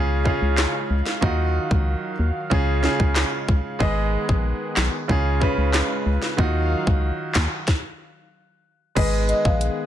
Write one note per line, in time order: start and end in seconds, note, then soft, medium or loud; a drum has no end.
0.00 0.30 C#2 loud
0.00 0.19 C#3 medium
0.00 1.21 C#3 medium
0.00 1.21 G#3 medium
0.00 0.19 C#4 medium
0.00 0.19 F4 medium
0.00 0.20 G#4 loud
0.00 3.77 F5 medium
0.24 0.93 C#3 medium
0.24 0.93 C#4 medium
0.24 0.93 F4 medium
0.24 0.94 G#4 loud
0.24 kick medium
0.42 0.66 C#2 medium
0.58 snare loud
0.58 clap medium
0.90 1.02 C#2 medium
1.06 snare medium
1.21 1.59 D#2 loud
1.21 2.12 D#3 medium
1.21 2.50 D#3 medium
1.21 2.50 F#3 medium
1.21 2.12 D#4 medium
1.21 2.13 F4 medium
1.21 2.13 F#4 loud
1.21 kick loud
1.71 1.95 C#2 medium
1.71 kick medium
2.19 2.31 D#2 medium
2.50 2.88 C#2 loud
2.50 2.76 C#3 loud
2.50 3.79 C#3 medium
2.50 3.79 G#3 medium
2.50 2.77 C#4 medium
2.50 2.77 F4 medium
2.50 2.78 G#4 loud
2.50 kick loud
2.82 3.51 C#3 medium
2.82 3.51 C#4 medium
2.82 3.52 F4 medium
2.82 3.52 G#4 loud
2.82 snare medium
3.00 3.24 C#2 medium
3.00 kick medium
3.16 snare loud
3.16 clap medium
3.48 3.61 C#2 medium
3.48 kick medium
3.79 4.17 G#1 loud
3.79 5.08 D#3 medium
3.79 4.70 G#3 medium
3.79 5.08 B3 medium
3.79 4.70 G#4 medium
3.79 5.08 G#4 medium
3.79 4.71 B4 medium
3.79 4.71 D#5 loud
3.79 kick loud
4.29 4.53 A#1 medium
4.29 kick medium
4.77 4.89 B1 medium
4.77 snare loud
4.77 clap medium
5.08 5.46 C#2 loud
5.08 5.35 C#3 medium
5.08 6.37 C#3 medium
5.08 6.37 G#3 medium
5.08 5.35 C#4 medium
5.08 6.37 F4 medium
5.08 5.35 F4 medium
5.08 5.36 G#4 loud
5.08 kick medium
5.40 6.09 C#3 medium
5.40 6.09 C#4 medium
5.40 6.10 F4 medium
5.40 6.10 B4 loud
5.40 kick medium
5.58 5.82 C#2 medium
5.74 snare loud
5.74 clap medium
6.06 6.18 C#2 medium
6.22 snare medium
6.37 6.75 D#2 loud
6.37 7.28 D#3 medium
6.37 7.66 D#3 medium
6.37 7.66 F#3 medium
6.37 7.28 D#4 medium
6.37 7.29 F4 medium
6.37 7.29 F#4 loud
6.37 7.66 F5 medium
6.37 kick loud
6.87 7.11 C#2 medium
6.87 kick loud
7.35 7.48 D#2 medium
7.35 kick medium
7.35 snare loud
7.35 clap medium
7.68 kick loud
7.68 snare medium
8.95 9.33 G#1 loud
8.95 9.86 D#3 medium
8.95 9.86 G#3 medium
8.95 9.86 B3 medium
8.95 9.86 G#4 medium
8.95 9.08 B4 loud
8.95 9.86 B4 medium
8.95 9.86 D#5 medium
8.95 kick loud
8.95 closed hi-hat medium
8.95 crash loud
9.29 9.40 D#5 medium
9.29 closed hi-hat medium
9.45 9.70 A#1 medium
9.45 9.68 F5 medium
9.45 kick loud
9.61 closed hi-hat medium